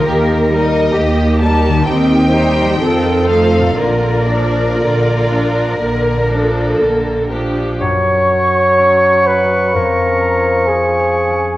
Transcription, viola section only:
X:1
M:4/4
L:1/8
Q:1/4=62
K:Bb
V:1 name="Viola section" clef=bass
[E,B,] G, [E,B,] G, [E,C] [G,E] [E,C] [F,A,] | [D,B,] [F,D] [D,B,] [F,D] [D,B,] [F,D] [D,B,] [F,D] | [K:F#] z8 |]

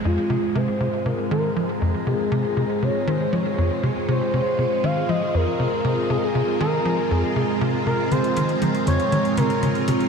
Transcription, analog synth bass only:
X:1
M:4/4
L:1/16
Q:1/4=119
K:Fm
V:1 name="Analog synth bass" clef=bass
F,, z C,2 C, z C,2 C,2 E,2 F, z F,, z | C,2 C, z C,2 C,2 E,2 F, z F,, z C,2 | C, z C,2 C,2 E,2 F, z F,, z C,2 C, z | C,2 C,2 E,2 F, z F,, z C,2 C, z C,2 |
C,2 E,2 F, z F,, z E,2 C, z C,2 C,2 |]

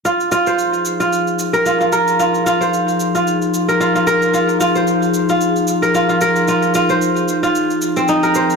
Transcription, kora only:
X:1
M:4/4
L:1/16
Q:"Swing 16ths" 1/4=112
K:Fm
V:1 name="Kora"
F z F c4 F z3 B F F B z | F z F c4 F z3 B F F B z | F z F c4 F z3 B F F B z | F z F c4 F z3 C E B c z |]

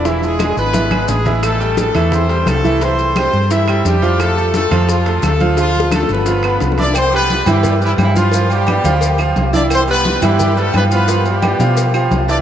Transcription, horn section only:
X:1
M:4/4
L:1/8
Q:1/4=174
K:C
V:1 name="Horn section"
[E,E] [^G,^G]2 [B,B]3 [G,G]2 | [A,A]2 [A,A]2 [Cc]2 [A,A]2 | [Cc]2 [Cc]2 [Ee]2 [G,G]2 | [A,A]2 [A,A]2 [F,F]2 [A,A]2 |
[F,F]2 [A,A] [B,B]4 [Dd] | [Cc] [B,B]2 [G,G] [G,G] [E,E] [E,E] [F,F]- | [F,F] [G,G]4 z2 [Dd] | [Cc] [B,B]2 [G,G] [G,G] [A,A] [B,B] [B,B]- |
[B,B] [G,G]4 z2 [Dd] |]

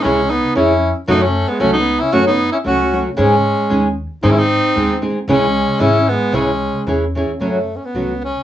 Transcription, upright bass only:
X:1
M:2/4
L:1/8
Q:1/4=114
K:C#m
V:1 name="Upright bass" clef=bass
C,,2 ^E,,2 | F,,2 C,,2 | F,,2 C,,2 | G,,2 D,,2 |
G,,2 D,,2 | C,,2 G,,,2 | C,,2 E,,2 | [K:F#m] F,,2 C,,2 |]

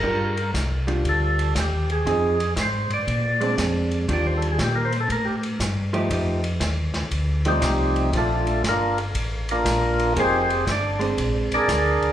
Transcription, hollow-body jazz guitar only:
X:1
M:4/4
L:1/8
Q:"Swing" 1/4=118
K:Gm
V:1 name="Hollow-body jazz guitar"
[G,DFB] z2 [G,DF]3 z2 | [F,CE_A] z4 [_A,CD]3 | [E,G,DF]3 z4 [F,A,EG] | [F,A,EG] z4 [F,A,EG]3 |
[F,A,D] z6 z | [F,B,E_A] z2 [_A,CD]3 z2 |]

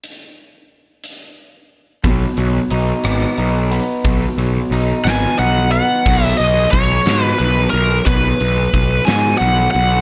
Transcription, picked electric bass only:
X:1
M:6/8
L:1/8
Q:3/8=60
K:B
V:1 name="Picked electric bass" clef=bass
z6 | B,,, B,,, B,,, G,,, B,,,2 | B,,, B,,, B,,, G,,, B,,,2 | B,,, B,,, B,,, G,, B,,, B,,, |
B,,, B,,, B,,, G,, B,,, B,,, |]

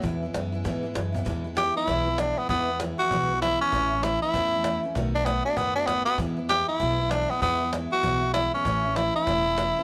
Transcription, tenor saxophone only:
X:1
M:4/4
L:1/8
Q:"Swing" 1/4=195
K:E
V:1 name="Tenor saxophone"
z8 | z2 =G E3 =D B, | B,2 z F3 E C- | C2 E E4 z |
z =D B, D B, D B, B, | z2 =G E3 =D B, | B,2 z F3 E C- | C2 E E4 z |]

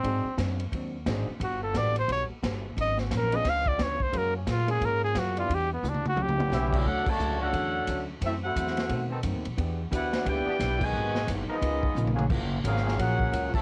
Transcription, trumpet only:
X:1
M:4/4
L:1/16
Q:"Swing" 1/4=176
K:F#phr
V:1 name="Trumpet"
=C4 z12 | F2 A2 d2 =c2 ^c2 z6 | ^d2 F2 ^A2 d2 ^e2 =d2 c2 =c2 | ^A2 C2 ^E2 ^G2 A2 G2 F2 E2 |
G2 B,2 D2 F2 G6- G z | z16 | z16 | z16 |
z16 | z16 |]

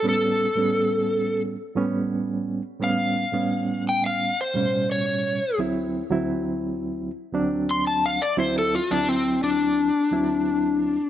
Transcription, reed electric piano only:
X:1
M:4/4
L:1/16
Q:1/4=86
K:Dmix
V:1 name="Reed electric piano" clef=bass
[A,,G,B,^C]2 z [A,,G,B,C]6 z [A,,G,B,C]4- [A,,G,B,C] z | [A,,G,B,^C]2 z [A,,G,B,C]6 z [A,,B,,G,C]4- [A,,B,,G,C] z | [D,,F,CE]2 z [D,,F,CE]6 z [D,,F,CD]4- [D,,F,CD] z | [D,,F,CE]2 z [D,,F,CE]6 z [D,,F,CE]4- [D,,F,CE] z |]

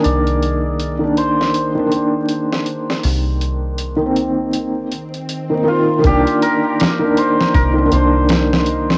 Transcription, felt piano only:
X:1
M:4/4
L:1/16
Q:"Swing 16ths" 1/4=80
K:Cm
V:1 name="Felt piano"
[E,B,D]4- [E,B,D] [E,B,D]4 [E,B,D] [E,B,D]6- | [E,B,D]4- [E,B,D] [E,B,C]4- [E,B,C] z3 [E,B,E] [E,B,F]2 | [E,B,D]4- [E,B,D] [E,B,D]4 [E,B,D] [E,B,D]6 |]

